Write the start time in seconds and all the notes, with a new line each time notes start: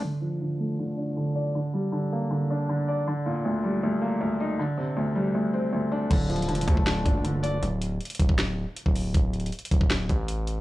0.03 D3
0.21 F3
0.41 D3
0.59 A3
0.79 D3
0.97 D4
1.16 D3
1.35 D5
1.55 D3
1.74 G3
1.92 D3
2.12 A#3
2.31 D3
2.50 D4
2.69 D3
2.88 D5
3.07 D3
3.26 A#2
3.45 D2
3.64 G3
3.83 D2
4.01 A#3
4.21 D2
4.40 D#4
4.59 D3
4.77 C3
4.97 D2
5.15 G3
5.35 D2
5.54 C4
5.73 D2
5.92 D4
6.10 D1 D3, kick, closed hi-hat, crash
6.29 F3, closed hi-hat
6.36 closed hi-hat
6.42 closed hi-hat
6.48 F1 D3, closed hi-hat
6.55 D1, closed hi-hat
6.61 closed hi-hat
6.67 D2 A3, kick, closed hi-hat
6.77 D1, kick
6.86 D3, snare, closed hi-hat
7.05 C1 D4, kick, closed hi-hat
7.24 D3, closed hi-hat
7.43 D5, closed hi-hat
7.63 D1, closed hi-hat
7.82 closed hi-hat
8.01 closed hi-hat
8.05 closed hi-hat
8.10 closed hi-hat
8.15 closed hi-hat
8.20 D1, kick, closed hi-hat
8.29 D1, kick
8.39 snare, closed hi-hat
8.77 closed hi-hat
8.86 D1, kick
8.96 open hi-hat
9.14 D1, kick, closed hi-hat
9.33 closed hi-hat
9.40 closed hi-hat
9.46 closed hi-hat
9.52 closed hi-hat
9.59 closed hi-hat
9.65 closed hi-hat
9.71 D1, kick, closed hi-hat
9.81 D1, kick
9.90 snare, closed hi-hat
10.09 A1, kick, closed hi-hat
10.28 closed hi-hat
10.47 closed hi-hat